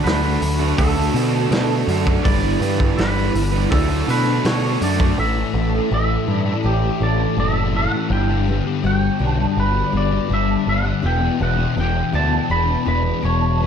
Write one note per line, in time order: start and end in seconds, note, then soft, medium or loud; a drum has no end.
0.00 0.41 D3 medium
0.00 0.76 A3 medium
0.00 0.25 D4 medium
0.00 2.27 D4 medium
0.00 0.23 F#4 medium
0.00 0.21 A4 medium
0.00 0.80 B4 medium
0.04 0.36 D2 loud
0.04 0.40 D3 loud
0.04 0.39 F#3 medium
0.04 0.42 A3 loud
0.04 0.44 D4 loud
0.04 snare loud
0.04 open hi-hat medium
0.22 0.42 D4 medium
0.22 0.41 F#4 medium
0.22 0.41 A4 medium
0.41 0.72 D2 medium
0.41 0.97 D3 medium
0.41 2.24 F#3 medium
0.41 0.62 A3 medium
0.41 0.60 D4 medium
0.41 muted overdriven electric guitar stroke soft
0.41 open hi-hat medium
0.59 0.98 A3 medium
0.59 0.95 D4 medium
0.59 0.78 D4 medium
0.59 0.78 F#4 medium
0.59 0.79 A4 medium
0.77 1.09 D2 medium
0.77 1.13 D3 loud
0.77 1.49 A3 medium
0.77 0.98 D4 loud
0.77 0.96 F#4 loud
0.77 1.84 A4 medium
0.77 0.94 A4 loud
0.77 kick loud
0.77 open hi-hat medium
0.95 1.17 D4 medium
0.95 1.14 D4 medium
0.95 1.15 F#4 medium
0.95 1.16 A4 medium
0.99 1.15 A3 medium
1.14 1.45 B2 medium
1.14 1.49 D3 medium
1.14 1.50 D3 medium
1.14 1.35 A3 medium
1.14 1.51 D4 medium
1.14 1.32 D4 medium
1.14 1.52 F#4 medium
1.14 1.52 A4 medium
1.14 open hi-hat medium
1.33 1.51 A3 medium
1.33 1.54 D4 medium
1.50 1.82 B2 medium
1.50 1.86 D3 loud
1.50 1.86 D3 medium
1.50 2.24 A3 medium
1.50 1.88 A3 loud
1.50 1.72 D4 loud
1.50 1.70 F#4 loud
1.50 1.68 A4 loud
1.50 snare loud
1.50 open hi-hat medium
1.54 1.90 D4 medium
1.70 1.88 D4 medium
1.70 1.88 F#4 medium
1.70 1.89 A4 medium
1.87 2.19 F#2 medium
1.87 2.22 D3 medium
1.87 2.08 A3 medium
1.87 2.08 D4 medium
1.87 2.05 D4 medium
1.87 2.05 F#4 medium
1.87 2.04 A4 medium
1.87 open hi-hat medium
2.05 2.24 A3 medium
2.05 3.74 D4 medium
2.05 2.24 D4 medium
2.05 2.23 F#4 medium
2.05 2.22 A4 medium
2.05 kick medium
2.23 2.56 G1 loud
2.23 2.60 G2 medium
2.23 2.45 D3 medium
2.23 2.97 E3 medium
2.23 2.58 G3 loud
2.23 2.60 B3 loud
2.23 2.59 D4 loud
2.23 2.61 B4 loud
2.23 2.97 D5 loud
2.23 kick loud
2.23 open hi-hat medium
2.27 2.41 G3 loud
2.42 2.62 D3 medium
2.42 2.63 G3 medium
2.59 2.92 G2 loud
2.59 2.97 G2 medium
2.59 2.99 D3 medium
2.59 3.32 G3 medium
2.59 3.15 B3 medium
2.59 3.71 B3 medium
2.59 3.16 D4 medium
2.59 3.13 B4 medium
2.59 open hi-hat medium
2.65 3.00 G3 medium
2.80 kick medium
2.97 3.29 G1 loud
2.97 3.33 G2 medium
2.97 3.35 D3 medium
2.97 3.34 E3 medium
2.97 3.37 G3 loud
2.97 3.73 B4 medium
2.97 snare loud
2.97 open hi-hat medium
3.14 3.33 B3 medium
3.14 3.33 D4 medium
3.14 3.33 B4 medium
3.33 3.65 G1 medium
3.33 3.69 G2 medium
3.33 3.55 D3 medium
3.33 3.71 E3 medium
3.33 muted overdriven electric guitar stroke soft
3.33 open hi-hat medium
3.38 3.51 G3 medium
3.52 3.69 G3 medium
3.52 3.69 B3 medium
3.52 3.70 D4 medium
3.52 3.69 B4 medium
3.56 3.70 D3 medium
3.71 4.02 D2 medium
3.71 4.06 D3 medium
3.71 5.18 F#3 medium
3.71 3.91 A3 medium
3.71 3.90 D4 loud
3.71 3.88 D4 loud
3.71 3.89 F#4 loud
3.71 4.40 A4 medium
3.71 3.87 A4 loud
3.71 kick loud
3.71 open hi-hat medium
3.88 4.07 A3 medium
3.88 4.09 D4 medium
3.88 4.08 D4 medium
3.88 4.09 F#4 medium
3.88 4.09 A4 medium
4.07 4.39 B2 medium
4.07 4.43 D3 medium
4.07 4.27 A3 medium
4.07 4.44 D4 medium
4.07 4.24 D4 medium
4.07 4.45 F#4 medium
4.07 4.46 A4 medium
4.07 4.46 B4 medium
4.07 open hi-hat medium
4.25 4.44 A3 medium
4.25 4.46 D4 medium
4.44 4.75 B2 medium
4.44 4.79 D3 loud
4.44 4.79 D3 medium
4.44 5.18 A3 medium
4.44 4.81 A3 medium
4.44 4.65 D4 medium
4.44 4.83 D4 loud
4.44 4.63 F#4 loud
4.44 4.61 A4 loud
4.44 4.83 C#5 medium
4.44 snare loud
4.44 open hi-hat medium
4.62 4.80 D4 medium
4.62 4.81 F#4 medium
4.62 4.82 A4 medium
4.80 5.12 F#2 medium
4.80 5.15 D3 medium
4.80 5.01 A3 medium
4.80 5.00 D4 medium
4.80 4.98 D4 medium
4.80 4.99 F#4 medium
4.80 4.98 A4 medium
4.80 5.19 D5 medium
4.80 open hi-hat medium
4.99 5.17 A3 medium
4.99 5.15 D4 medium
4.99 5.17 D4 medium
4.99 5.16 F#4 medium
4.99 5.15 A4 medium
4.99 kick medium
5.17 5.42 A1 loud
5.17 5.53 A2 medium
5.17 6.62 E3 medium
5.17 5.38 E3 medium
5.17 5.35 A3 medium
5.17 5.93 E5 medium
5.36 5.54 E3 medium
5.36 5.56 A3 medium
5.54 5.78 A1 loud
5.54 5.89 A2 medium
5.54 5.74 E3 medium
5.54 6.99 A3 medium
5.54 5.70 A3 medium
5.72 5.91 E3 medium
5.72 5.92 A3 medium
5.90 6.16 A1 loud
5.90 6.25 A2 medium
5.90 6.27 E3 medium
5.90 6.29 A3 medium
5.90 8.83 G4 medium
5.90 6.68 E5 medium
6.26 6.52 G2 medium
6.26 6.82 A2 medium
6.26 6.47 E3 medium
6.26 6.44 A3 medium
6.26 7.37 D4 medium
6.45 7.01 E3 medium
6.45 7.02 A3 medium
6.63 6.89 A1 medium
6.63 7.72 E3 medium
6.63 7.03 G4 medium
7.00 7.25 A1 medium
7.00 7.35 A2 medium
7.00 7.20 E3 medium
7.00 8.11 A3 medium
7.00 7.17 A3 medium
7.00 7.39 D5 medium
7.18 7.37 E3 medium
7.18 7.38 A3 medium
7.37 7.86 F#1 medium
7.37 7.73 A2 medium
7.37 7.74 E3 medium
7.37 7.76 A3 medium
7.37 9.19 D4 medium
7.37 7.76 E5 medium
7.74 8.09 A2 medium
7.74 8.11 E3 medium
7.74 7.94 E3 medium
7.74 7.91 A3 medium
7.74 8.12 F#5 medium
7.92 8.10 E3 medium
7.92 8.08 A3 medium
8.10 8.59 G1 loud
8.10 8.47 G2 medium
8.10 8.31 D3 loud
8.10 8.29 G3 loud
8.10 8.85 G5 medium
8.29 8.48 D3 medium
8.29 8.50 G3 medium
8.47 8.83 G2 medium
8.47 8.67 D3 medium
8.47 8.65 G3 medium
8.47 9.92 B3 medium
8.65 8.85 D3 medium
8.65 8.87 G3 medium
8.83 9.08 G1 medium
8.83 9.19 G2 medium
8.83 9.21 D3 loud
8.83 10.67 F#4 medium
8.83 9.39 G5 medium
8.88 9.23 G3 loud
9.19 9.45 B1 medium
9.19 9.76 G2 medium
9.19 9.41 D3 medium
9.19 10.29 D4 medium
9.24 9.38 G3 medium
9.39 9.94 D3 medium
9.39 9.95 G3 medium
9.39 9.61 F#5 medium
9.57 9.81 G1 medium
9.57 9.93 B4 medium
9.93 10.18 G1 medium
9.93 10.28 G2 medium
9.93 10.14 D3 medium
9.93 10.10 G3 medium
9.93 11.01 B3 medium
9.97 10.33 D5 loud
10.11 10.30 D3 medium
10.11 10.32 G3 medium
10.29 10.55 G1 medium
10.29 10.64 G2 medium
10.29 10.66 D3 medium
10.29 10.68 G3 loud
10.29 12.13 D4 medium
10.34 10.69 E5 loud
10.66 10.91 G1 medium
10.66 11.01 G2 medium
10.66 10.86 D3 medium
10.66 10.82 G3 medium
10.66 11.06 F#5 medium
10.84 11.02 D3 medium
10.84 11.01 G3 medium
11.02 11.28 E1 loud
11.02 11.38 E2 medium
11.02 11.23 B2 medium
11.02 11.20 E3 medium
11.02 11.38 B3 medium
11.02 11.42 G5 loud
11.21 11.40 B2 medium
11.21 11.41 E3 medium
11.39 11.65 E1 loud
11.39 11.74 E2 medium
11.39 11.59 B2 medium
11.39 11.56 E3 medium
11.39 12.48 B3 medium
11.39 11.79 F#5 medium
11.57 11.76 B2 medium
11.57 11.77 E3 medium
11.75 12.01 E1 loud
11.75 12.11 E2 medium
11.75 12.12 B2 medium
11.75 12.13 E3 loud
11.75 13.60 G4 medium
11.80 12.15 G5 medium
12.12 12.38 D2 medium
12.12 12.68 E2 medium
12.12 12.33 B2 medium
12.12 12.30 E3 medium
12.12 13.22 D4 medium
12.12 12.51 A5 loud
12.31 12.86 B2 medium
12.31 12.87 E3 medium
12.50 12.75 E1 medium
12.50 12.84 B3 medium
12.50 12.88 B5 loud
12.85 13.11 E1 medium
12.85 13.21 E2 medium
12.85 13.06 B2 medium
12.85 13.02 E3 medium
12.85 13.59 B3 medium
12.85 13.25 B4 medium
13.04 13.22 B2 medium
13.04 13.24 E3 medium
13.22 13.67 E1 medium
13.22 13.58 E2 medium
13.22 13.60 B2 medium
13.22 13.61 E3 loud
13.22 13.67 D4 medium
13.22 13.67 C#5 medium
13.59 13.67 E2 medium
13.59 13.67 B2 medium
13.59 13.67 E3 medium
13.59 13.67 B3 medium